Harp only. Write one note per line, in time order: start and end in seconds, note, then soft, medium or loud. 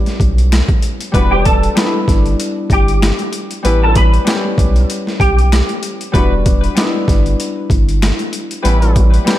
0.00 1.10 G3 medium
0.00 1.13 B3 medium
0.00 1.20 C#4 medium
0.00 1.22 G4 medium
1.12 1.74 G3 medium
1.12 1.57 B3 medium
1.12 1.57 D4 medium
1.16 1.58 F#4 medium
1.75 3.61 G3 medium
1.75 3.63 B3 medium
1.75 3.71 D4 medium
1.75 1.85 D#4 medium
1.85 3.66 E4 medium
3.63 4.23 G3 medium
3.63 4.07 B3 medium
3.63 4.08 C#4 medium
3.67 4.09 E4 medium
4.24 6.11 G3 medium
4.24 6.13 B3 medium
4.24 6.20 C#4 medium
4.28 6.22 G4 medium
6.12 6.74 G3 medium
6.12 6.57 B3 medium
6.12 6.57 D4 medium
6.16 6.58 F#4 medium
6.75 8.61 G3 medium
6.75 8.64 B3 medium
6.75 8.71 D4 medium
6.79 6.85 D#4 medium
6.85 8.66 E4 medium
8.63 9.23 G3 medium
8.63 9.07 B3 medium
8.63 9.08 C#4 medium
8.67 9.09 E4 medium
9.24 9.39 G3 medium
9.24 9.39 B3 medium
9.24 9.39 C#4 medium
9.28 9.39 G4 medium